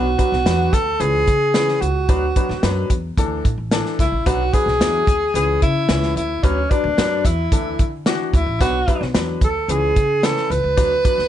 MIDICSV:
0, 0, Header, 1, 5, 480
1, 0, Start_track
1, 0, Tempo, 542495
1, 1850, Time_signature, 4, 2, 24, 8
1, 9981, End_track
2, 0, Start_track
2, 0, Title_t, "Tenor saxophone"
2, 0, Program_c, 0, 66
2, 0, Note_on_c, 0, 66, 109
2, 649, Note_on_c, 0, 69, 102
2, 662, Note_off_c, 0, 66, 0
2, 887, Note_on_c, 0, 68, 107
2, 900, Note_off_c, 0, 69, 0
2, 1599, Note_on_c, 0, 66, 94
2, 1612, Note_off_c, 0, 68, 0
2, 2565, Note_off_c, 0, 66, 0
2, 3540, Note_on_c, 0, 64, 96
2, 3774, Note_on_c, 0, 66, 107
2, 3788, Note_off_c, 0, 64, 0
2, 4014, Note_on_c, 0, 68, 123
2, 4027, Note_off_c, 0, 66, 0
2, 4733, Note_off_c, 0, 68, 0
2, 4739, Note_on_c, 0, 68, 107
2, 4959, Note_off_c, 0, 68, 0
2, 4979, Note_on_c, 0, 64, 104
2, 5422, Note_off_c, 0, 64, 0
2, 5459, Note_on_c, 0, 64, 95
2, 5693, Note_on_c, 0, 61, 96
2, 5707, Note_off_c, 0, 64, 0
2, 5932, Note_on_c, 0, 62, 99
2, 5945, Note_off_c, 0, 61, 0
2, 6417, Note_on_c, 0, 64, 89
2, 6430, Note_off_c, 0, 62, 0
2, 7135, Note_off_c, 0, 64, 0
2, 7380, Note_on_c, 0, 64, 94
2, 7600, Note_off_c, 0, 64, 0
2, 7622, Note_on_c, 0, 66, 115
2, 8064, Note_off_c, 0, 66, 0
2, 8353, Note_on_c, 0, 69, 90
2, 8587, Note_on_c, 0, 68, 98
2, 8600, Note_off_c, 0, 69, 0
2, 9063, Note_on_c, 0, 69, 96
2, 9077, Note_off_c, 0, 68, 0
2, 9299, Note_on_c, 0, 71, 111
2, 9313, Note_off_c, 0, 69, 0
2, 9981, Note_off_c, 0, 71, 0
2, 9981, End_track
3, 0, Start_track
3, 0, Title_t, "Grand piano"
3, 0, Program_c, 1, 0
3, 162, Note_on_c, 1, 54, 77
3, 163, Note_on_c, 1, 62, 68
3, 163, Note_on_c, 1, 71, 84
3, 287, Note_off_c, 1, 54, 0
3, 288, Note_off_c, 1, 62, 0
3, 288, Note_off_c, 1, 71, 0
3, 405, Note_on_c, 1, 54, 74
3, 408, Note_on_c, 1, 62, 72
3, 409, Note_on_c, 1, 71, 87
3, 651, Note_off_c, 1, 54, 0
3, 652, Note_off_c, 1, 62, 0
3, 652, Note_off_c, 1, 71, 0
3, 882, Note_on_c, 1, 52, 72
3, 886, Note_on_c, 1, 61, 67
3, 887, Note_on_c, 1, 71, 81
3, 1129, Note_off_c, 1, 52, 0
3, 1131, Note_off_c, 1, 61, 0
3, 1131, Note_off_c, 1, 71, 0
3, 1366, Note_on_c, 1, 52, 77
3, 1369, Note_on_c, 1, 71, 85
3, 1370, Note_on_c, 1, 61, 72
3, 1611, Note_off_c, 1, 52, 0
3, 1612, Note_off_c, 1, 71, 0
3, 1613, Note_off_c, 1, 61, 0
3, 1851, Note_on_c, 1, 54, 87
3, 1851, Note_on_c, 1, 62, 84
3, 1852, Note_on_c, 1, 71, 97
3, 1972, Note_off_c, 1, 54, 0
3, 1972, Note_off_c, 1, 62, 0
3, 1973, Note_off_c, 1, 71, 0
3, 2094, Note_on_c, 1, 54, 75
3, 2095, Note_on_c, 1, 62, 67
3, 2095, Note_on_c, 1, 71, 78
3, 2214, Note_off_c, 1, 54, 0
3, 2214, Note_off_c, 1, 62, 0
3, 2214, Note_off_c, 1, 71, 0
3, 2330, Note_on_c, 1, 54, 86
3, 2331, Note_on_c, 1, 62, 77
3, 2332, Note_on_c, 1, 71, 95
3, 2573, Note_off_c, 1, 54, 0
3, 2574, Note_off_c, 1, 62, 0
3, 2574, Note_off_c, 1, 71, 0
3, 2814, Note_on_c, 1, 52, 83
3, 2817, Note_on_c, 1, 62, 76
3, 2818, Note_on_c, 1, 69, 98
3, 3055, Note_off_c, 1, 52, 0
3, 3057, Note_off_c, 1, 62, 0
3, 3058, Note_off_c, 1, 69, 0
3, 3290, Note_on_c, 1, 52, 91
3, 3292, Note_on_c, 1, 69, 97
3, 3293, Note_on_c, 1, 62, 86
3, 3534, Note_off_c, 1, 52, 0
3, 3535, Note_off_c, 1, 62, 0
3, 3535, Note_off_c, 1, 69, 0
3, 3771, Note_on_c, 1, 54, 95
3, 3772, Note_on_c, 1, 62, 87
3, 3775, Note_on_c, 1, 71, 104
3, 3893, Note_off_c, 1, 54, 0
3, 3893, Note_off_c, 1, 62, 0
3, 3895, Note_off_c, 1, 71, 0
3, 4012, Note_on_c, 1, 62, 65
3, 4014, Note_on_c, 1, 54, 68
3, 4015, Note_on_c, 1, 71, 79
3, 4133, Note_off_c, 1, 62, 0
3, 4134, Note_off_c, 1, 54, 0
3, 4135, Note_off_c, 1, 71, 0
3, 4253, Note_on_c, 1, 54, 73
3, 4254, Note_on_c, 1, 62, 72
3, 4254, Note_on_c, 1, 64, 79
3, 4495, Note_off_c, 1, 54, 0
3, 4496, Note_off_c, 1, 62, 0
3, 4496, Note_off_c, 1, 64, 0
3, 4736, Note_on_c, 1, 52, 76
3, 4736, Note_on_c, 1, 61, 65
3, 4739, Note_on_c, 1, 71, 81
3, 4977, Note_off_c, 1, 52, 0
3, 4977, Note_off_c, 1, 61, 0
3, 4979, Note_off_c, 1, 71, 0
3, 5210, Note_on_c, 1, 52, 75
3, 5213, Note_on_c, 1, 61, 66
3, 5214, Note_on_c, 1, 71, 80
3, 5454, Note_off_c, 1, 52, 0
3, 5455, Note_off_c, 1, 61, 0
3, 5456, Note_off_c, 1, 71, 0
3, 5695, Note_on_c, 1, 54, 98
3, 5695, Note_on_c, 1, 62, 81
3, 5699, Note_on_c, 1, 71, 99
3, 5815, Note_off_c, 1, 54, 0
3, 5815, Note_off_c, 1, 62, 0
3, 5817, Note_off_c, 1, 71, 0
3, 5934, Note_on_c, 1, 54, 73
3, 5936, Note_on_c, 1, 71, 81
3, 5937, Note_on_c, 1, 62, 72
3, 6055, Note_off_c, 1, 54, 0
3, 6055, Note_off_c, 1, 71, 0
3, 6056, Note_off_c, 1, 62, 0
3, 6176, Note_on_c, 1, 54, 82
3, 6178, Note_on_c, 1, 62, 73
3, 6180, Note_on_c, 1, 71, 86
3, 6417, Note_off_c, 1, 54, 0
3, 6418, Note_off_c, 1, 62, 0
3, 6419, Note_off_c, 1, 71, 0
3, 6654, Note_on_c, 1, 52, 75
3, 6659, Note_on_c, 1, 62, 68
3, 6660, Note_on_c, 1, 69, 81
3, 6897, Note_off_c, 1, 52, 0
3, 6899, Note_off_c, 1, 62, 0
3, 6899, Note_off_c, 1, 69, 0
3, 7133, Note_on_c, 1, 52, 92
3, 7137, Note_on_c, 1, 62, 81
3, 7138, Note_on_c, 1, 66, 104
3, 7376, Note_off_c, 1, 52, 0
3, 7378, Note_off_c, 1, 62, 0
3, 7378, Note_off_c, 1, 66, 0
3, 7615, Note_on_c, 1, 54, 88
3, 7615, Note_on_c, 1, 62, 86
3, 7618, Note_on_c, 1, 71, 102
3, 7735, Note_off_c, 1, 62, 0
3, 7736, Note_off_c, 1, 54, 0
3, 7737, Note_off_c, 1, 71, 0
3, 7855, Note_on_c, 1, 54, 74
3, 7857, Note_on_c, 1, 62, 70
3, 7859, Note_on_c, 1, 71, 85
3, 7976, Note_off_c, 1, 54, 0
3, 7976, Note_off_c, 1, 62, 0
3, 7977, Note_off_c, 1, 71, 0
3, 8087, Note_on_c, 1, 54, 71
3, 8090, Note_on_c, 1, 62, 70
3, 8092, Note_on_c, 1, 71, 84
3, 8333, Note_off_c, 1, 54, 0
3, 8334, Note_off_c, 1, 62, 0
3, 8335, Note_off_c, 1, 71, 0
3, 8576, Note_on_c, 1, 71, 77
3, 8577, Note_on_c, 1, 52, 74
3, 8577, Note_on_c, 1, 61, 62
3, 8817, Note_off_c, 1, 71, 0
3, 8818, Note_off_c, 1, 52, 0
3, 8818, Note_off_c, 1, 61, 0
3, 9054, Note_on_c, 1, 52, 76
3, 9054, Note_on_c, 1, 71, 86
3, 9055, Note_on_c, 1, 61, 67
3, 9296, Note_off_c, 1, 52, 0
3, 9296, Note_off_c, 1, 61, 0
3, 9296, Note_off_c, 1, 71, 0
3, 9530, Note_on_c, 1, 54, 86
3, 9530, Note_on_c, 1, 62, 78
3, 9531, Note_on_c, 1, 71, 96
3, 9652, Note_off_c, 1, 62, 0
3, 9653, Note_off_c, 1, 54, 0
3, 9653, Note_off_c, 1, 71, 0
3, 9772, Note_on_c, 1, 54, 69
3, 9772, Note_on_c, 1, 62, 70
3, 9775, Note_on_c, 1, 71, 80
3, 9893, Note_off_c, 1, 54, 0
3, 9893, Note_off_c, 1, 62, 0
3, 9895, Note_off_c, 1, 71, 0
3, 9981, End_track
4, 0, Start_track
4, 0, Title_t, "Upright bass"
4, 0, Program_c, 2, 32
4, 0, Note_on_c, 2, 35, 109
4, 122, Note_off_c, 2, 35, 0
4, 284, Note_on_c, 2, 35, 84
4, 383, Note_off_c, 2, 35, 0
4, 403, Note_on_c, 2, 40, 104
4, 600, Note_off_c, 2, 40, 0
4, 645, Note_on_c, 2, 38, 93
4, 841, Note_off_c, 2, 38, 0
4, 883, Note_on_c, 2, 37, 103
4, 1080, Note_off_c, 2, 37, 0
4, 1130, Note_on_c, 2, 49, 98
4, 1518, Note_off_c, 2, 49, 0
4, 1605, Note_on_c, 2, 37, 87
4, 1801, Note_off_c, 2, 37, 0
4, 1847, Note_on_c, 2, 38, 95
4, 2043, Note_off_c, 2, 38, 0
4, 2204, Note_on_c, 2, 38, 98
4, 2304, Note_off_c, 2, 38, 0
4, 2327, Note_on_c, 2, 42, 100
4, 2523, Note_off_c, 2, 42, 0
4, 2564, Note_on_c, 2, 40, 79
4, 2761, Note_off_c, 2, 40, 0
4, 2810, Note_on_c, 2, 38, 104
4, 3004, Note_off_c, 2, 38, 0
4, 3052, Note_on_c, 2, 45, 95
4, 3149, Note_off_c, 2, 45, 0
4, 3164, Note_on_c, 2, 33, 80
4, 3361, Note_off_c, 2, 33, 0
4, 3530, Note_on_c, 2, 37, 82
4, 3627, Note_off_c, 2, 37, 0
4, 3645, Note_on_c, 2, 33, 85
4, 3744, Note_off_c, 2, 33, 0
4, 3770, Note_on_c, 2, 35, 105
4, 3965, Note_off_c, 2, 35, 0
4, 4123, Note_on_c, 2, 35, 93
4, 4224, Note_off_c, 2, 35, 0
4, 4244, Note_on_c, 2, 40, 98
4, 4442, Note_off_c, 2, 40, 0
4, 4488, Note_on_c, 2, 38, 83
4, 4684, Note_off_c, 2, 38, 0
4, 4725, Note_on_c, 2, 37, 99
4, 4922, Note_off_c, 2, 37, 0
4, 4974, Note_on_c, 2, 49, 105
4, 5167, Note_off_c, 2, 49, 0
4, 5210, Note_on_c, 2, 37, 104
4, 5405, Note_off_c, 2, 37, 0
4, 5450, Note_on_c, 2, 38, 96
4, 5645, Note_off_c, 2, 38, 0
4, 5692, Note_on_c, 2, 38, 108
4, 5886, Note_off_c, 2, 38, 0
4, 6050, Note_on_c, 2, 38, 101
4, 6148, Note_off_c, 2, 38, 0
4, 6169, Note_on_c, 2, 42, 90
4, 6365, Note_off_c, 2, 42, 0
4, 6412, Note_on_c, 2, 40, 85
4, 6607, Note_off_c, 2, 40, 0
4, 6652, Note_on_c, 2, 38, 94
4, 6846, Note_off_c, 2, 38, 0
4, 6895, Note_on_c, 2, 50, 92
4, 7185, Note_off_c, 2, 50, 0
4, 7375, Note_on_c, 2, 38, 107
4, 7471, Note_off_c, 2, 38, 0
4, 7489, Note_on_c, 2, 33, 93
4, 7587, Note_off_c, 2, 33, 0
4, 7612, Note_on_c, 2, 35, 97
4, 7807, Note_off_c, 2, 35, 0
4, 7970, Note_on_c, 2, 35, 89
4, 8068, Note_off_c, 2, 35, 0
4, 8090, Note_on_c, 2, 40, 92
4, 8285, Note_off_c, 2, 40, 0
4, 8330, Note_on_c, 2, 38, 94
4, 8525, Note_off_c, 2, 38, 0
4, 8568, Note_on_c, 2, 37, 98
4, 8764, Note_off_c, 2, 37, 0
4, 8814, Note_on_c, 2, 49, 100
4, 9105, Note_off_c, 2, 49, 0
4, 9291, Note_on_c, 2, 37, 103
4, 9389, Note_off_c, 2, 37, 0
4, 9412, Note_on_c, 2, 37, 85
4, 9509, Note_off_c, 2, 37, 0
4, 9535, Note_on_c, 2, 38, 102
4, 9728, Note_off_c, 2, 38, 0
4, 9891, Note_on_c, 2, 38, 86
4, 9981, Note_off_c, 2, 38, 0
4, 9981, End_track
5, 0, Start_track
5, 0, Title_t, "Drums"
5, 166, Note_on_c, 9, 42, 64
5, 168, Note_on_c, 9, 36, 86
5, 254, Note_off_c, 9, 42, 0
5, 257, Note_off_c, 9, 36, 0
5, 293, Note_on_c, 9, 38, 32
5, 382, Note_off_c, 9, 38, 0
5, 408, Note_on_c, 9, 38, 110
5, 410, Note_on_c, 9, 42, 85
5, 497, Note_off_c, 9, 38, 0
5, 498, Note_off_c, 9, 42, 0
5, 645, Note_on_c, 9, 36, 93
5, 648, Note_on_c, 9, 42, 88
5, 734, Note_off_c, 9, 36, 0
5, 737, Note_off_c, 9, 42, 0
5, 886, Note_on_c, 9, 42, 87
5, 975, Note_off_c, 9, 42, 0
5, 1126, Note_on_c, 9, 42, 71
5, 1130, Note_on_c, 9, 36, 86
5, 1214, Note_off_c, 9, 42, 0
5, 1218, Note_off_c, 9, 36, 0
5, 1365, Note_on_c, 9, 38, 112
5, 1368, Note_on_c, 9, 42, 80
5, 1454, Note_off_c, 9, 38, 0
5, 1456, Note_off_c, 9, 42, 0
5, 1487, Note_on_c, 9, 38, 38
5, 1575, Note_off_c, 9, 38, 0
5, 1610, Note_on_c, 9, 42, 68
5, 1698, Note_off_c, 9, 42, 0
5, 1846, Note_on_c, 9, 42, 88
5, 1848, Note_on_c, 9, 36, 103
5, 1935, Note_off_c, 9, 42, 0
5, 1936, Note_off_c, 9, 36, 0
5, 2087, Note_on_c, 9, 42, 67
5, 2089, Note_on_c, 9, 36, 93
5, 2176, Note_off_c, 9, 42, 0
5, 2178, Note_off_c, 9, 36, 0
5, 2212, Note_on_c, 9, 38, 30
5, 2301, Note_off_c, 9, 38, 0
5, 2327, Note_on_c, 9, 38, 111
5, 2329, Note_on_c, 9, 42, 85
5, 2416, Note_off_c, 9, 38, 0
5, 2417, Note_off_c, 9, 42, 0
5, 2566, Note_on_c, 9, 36, 87
5, 2566, Note_on_c, 9, 42, 92
5, 2654, Note_off_c, 9, 36, 0
5, 2655, Note_off_c, 9, 42, 0
5, 2809, Note_on_c, 9, 36, 99
5, 2812, Note_on_c, 9, 42, 97
5, 2898, Note_off_c, 9, 36, 0
5, 2900, Note_off_c, 9, 42, 0
5, 3052, Note_on_c, 9, 36, 83
5, 3052, Note_on_c, 9, 42, 71
5, 3140, Note_off_c, 9, 42, 0
5, 3141, Note_off_c, 9, 36, 0
5, 3287, Note_on_c, 9, 38, 117
5, 3289, Note_on_c, 9, 42, 83
5, 3375, Note_off_c, 9, 38, 0
5, 3378, Note_off_c, 9, 42, 0
5, 3411, Note_on_c, 9, 38, 37
5, 3500, Note_off_c, 9, 38, 0
5, 3532, Note_on_c, 9, 36, 93
5, 3537, Note_on_c, 9, 42, 69
5, 3620, Note_off_c, 9, 36, 0
5, 3625, Note_off_c, 9, 42, 0
5, 3771, Note_on_c, 9, 36, 107
5, 3773, Note_on_c, 9, 42, 89
5, 3860, Note_off_c, 9, 36, 0
5, 3861, Note_off_c, 9, 42, 0
5, 4010, Note_on_c, 9, 42, 69
5, 4013, Note_on_c, 9, 36, 92
5, 4099, Note_off_c, 9, 42, 0
5, 4101, Note_off_c, 9, 36, 0
5, 4139, Note_on_c, 9, 38, 34
5, 4227, Note_off_c, 9, 38, 0
5, 4255, Note_on_c, 9, 38, 113
5, 4257, Note_on_c, 9, 42, 91
5, 4344, Note_off_c, 9, 38, 0
5, 4345, Note_off_c, 9, 42, 0
5, 4489, Note_on_c, 9, 36, 101
5, 4494, Note_on_c, 9, 42, 83
5, 4578, Note_off_c, 9, 36, 0
5, 4582, Note_off_c, 9, 42, 0
5, 4734, Note_on_c, 9, 42, 95
5, 4823, Note_off_c, 9, 42, 0
5, 4973, Note_on_c, 9, 42, 70
5, 4975, Note_on_c, 9, 36, 80
5, 5061, Note_off_c, 9, 42, 0
5, 5064, Note_off_c, 9, 36, 0
5, 5209, Note_on_c, 9, 38, 109
5, 5211, Note_on_c, 9, 42, 84
5, 5297, Note_off_c, 9, 38, 0
5, 5300, Note_off_c, 9, 42, 0
5, 5334, Note_on_c, 9, 38, 41
5, 5422, Note_off_c, 9, 38, 0
5, 5458, Note_on_c, 9, 42, 77
5, 5547, Note_off_c, 9, 42, 0
5, 5694, Note_on_c, 9, 36, 103
5, 5695, Note_on_c, 9, 42, 82
5, 5783, Note_off_c, 9, 36, 0
5, 5784, Note_off_c, 9, 42, 0
5, 5936, Note_on_c, 9, 36, 89
5, 5936, Note_on_c, 9, 42, 65
5, 6024, Note_off_c, 9, 36, 0
5, 6025, Note_off_c, 9, 42, 0
5, 6176, Note_on_c, 9, 38, 110
5, 6178, Note_on_c, 9, 42, 82
5, 6265, Note_off_c, 9, 38, 0
5, 6266, Note_off_c, 9, 42, 0
5, 6412, Note_on_c, 9, 36, 97
5, 6415, Note_on_c, 9, 42, 89
5, 6501, Note_off_c, 9, 36, 0
5, 6503, Note_off_c, 9, 42, 0
5, 6653, Note_on_c, 9, 36, 104
5, 6653, Note_on_c, 9, 42, 93
5, 6741, Note_off_c, 9, 42, 0
5, 6742, Note_off_c, 9, 36, 0
5, 6893, Note_on_c, 9, 42, 72
5, 6896, Note_on_c, 9, 36, 89
5, 6981, Note_off_c, 9, 42, 0
5, 6985, Note_off_c, 9, 36, 0
5, 7131, Note_on_c, 9, 38, 117
5, 7134, Note_on_c, 9, 42, 88
5, 7220, Note_off_c, 9, 38, 0
5, 7222, Note_off_c, 9, 42, 0
5, 7375, Note_on_c, 9, 36, 99
5, 7381, Note_on_c, 9, 42, 74
5, 7463, Note_off_c, 9, 36, 0
5, 7469, Note_off_c, 9, 42, 0
5, 7614, Note_on_c, 9, 36, 106
5, 7615, Note_on_c, 9, 42, 94
5, 7703, Note_off_c, 9, 36, 0
5, 7704, Note_off_c, 9, 42, 0
5, 7856, Note_on_c, 9, 36, 85
5, 7856, Note_on_c, 9, 42, 66
5, 7944, Note_off_c, 9, 36, 0
5, 7945, Note_off_c, 9, 42, 0
5, 7980, Note_on_c, 9, 38, 33
5, 8068, Note_off_c, 9, 38, 0
5, 8092, Note_on_c, 9, 38, 110
5, 8094, Note_on_c, 9, 42, 84
5, 8181, Note_off_c, 9, 38, 0
5, 8182, Note_off_c, 9, 42, 0
5, 8330, Note_on_c, 9, 36, 95
5, 8330, Note_on_c, 9, 42, 85
5, 8418, Note_off_c, 9, 36, 0
5, 8418, Note_off_c, 9, 42, 0
5, 8574, Note_on_c, 9, 42, 98
5, 8662, Note_off_c, 9, 42, 0
5, 8813, Note_on_c, 9, 42, 73
5, 8816, Note_on_c, 9, 36, 80
5, 8902, Note_off_c, 9, 42, 0
5, 8905, Note_off_c, 9, 36, 0
5, 9054, Note_on_c, 9, 38, 104
5, 9057, Note_on_c, 9, 42, 85
5, 9142, Note_off_c, 9, 38, 0
5, 9145, Note_off_c, 9, 42, 0
5, 9176, Note_on_c, 9, 38, 40
5, 9264, Note_off_c, 9, 38, 0
5, 9302, Note_on_c, 9, 42, 73
5, 9390, Note_off_c, 9, 42, 0
5, 9532, Note_on_c, 9, 42, 87
5, 9534, Note_on_c, 9, 36, 103
5, 9621, Note_off_c, 9, 42, 0
5, 9623, Note_off_c, 9, 36, 0
5, 9776, Note_on_c, 9, 36, 93
5, 9776, Note_on_c, 9, 42, 67
5, 9864, Note_off_c, 9, 42, 0
5, 9865, Note_off_c, 9, 36, 0
5, 9899, Note_on_c, 9, 38, 35
5, 9981, Note_off_c, 9, 38, 0
5, 9981, End_track
0, 0, End_of_file